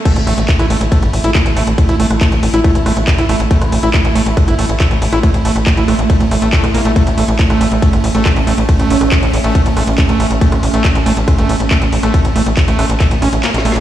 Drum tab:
CC |x-----------------------------------------------|------------------------------------------------|------------------------------------------------|------------------------------------------------|
RD |x-----------x-----------x-----------x-----------|x-----------x-----------x-----------x-----------|x-----------x-----------x-----------x-----------|x-----------x-----------x-----------x-----------|
HH |x--x--o--x--x--x--o--x--x--x--o--x--x--x--o--x--|x--x--o--x--x--x--o--x--x--x--o--x--x--x--o--x--|x--x--o--x--x--x--o--x--x--x--o--x--x--x--o--x--|x--x--o--x--x--x--o--x--x--x--o--x--x--x--o--x--|
CP |------------x-----------------------x-----------|------------x-----------------------x-----------|------------x-----------------------x-----------|------------x-----------------------x-----------|
SD |------r--------r-----------r--------r-----------|r--------r-----------r--------r-----------r-----|---r-----------r--------r-----------r--------r--|---------r--------r-----------r--------r--------|
BD |o-----------o-----------o-----------o-----------|o-----------o-----------o-----------o-----------|o-----------o-----------o-----------o-----------|o-----------o-----------o-----------o-----------|

CC |------------------------------------------------|------------------------------------------------|------------------------------------------------|------------------------------------------------|
RD |x-----------x-----------x-----------x-----------|x-----------x-----------x-----------x-----------|x-----------x-----------x-----------x-----------|x-----------x-----------x-----------x-----------|
HH |x--x--o--x--x--x--o--x--x--x--o--x--x--x--o--x--|x--x--o--x--x--x--o--x--x--x--o--x--x--x--o--x--|x--x--o--x--x--x--o--x--x--x--o--x--x--x--o--x--|x--x--o--x--x--x--o--x--x--x--o--x--x--x--o--x--|
CP |------------x-----------------------x-----------|------------x-----------------------x-----------|------------x-----------------------x-----------|------------x-----------x-----------x-----------|
SD |------r--------r-----------r--------r-----------|r--------r-----------r--------r-----------r-----|---r-----------r--------r-----------r--------r--|---------r--------r-----------r-----o---o---o---|
BD |o-----------o-----------o-----------o-----------|o-----------o-----------o-----------o-----------|o-----------o-----------o-----------o-----------|o-----------o-----------o-----------------------|